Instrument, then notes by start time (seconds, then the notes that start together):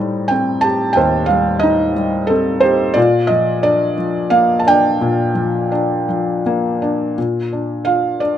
felt piano
Already playing: A2 G3 D#4 C5 A5
0.28 C4 G5
0.61 G4 A5
0.93 D#2 G5
0.97 C5
1.26 G3 F5
1.59 D#4 D#5
1.96 G3
2.27 C4 A4
2.60 G4 C5
2.94 A#2 F4 D5
3.27 F3 D#5
3.63 D4 D5
3.98 F3
4.30 A#3 F5
4.59 A5
4.66 D4 D5 G5
5.01 A#2
5.35 F3
5.72 D4
6.09 F3
6.46 A#3
6.82 D4
7.18 A#2
7.53 D4
7.85 F4 F5
8.20 D4 D5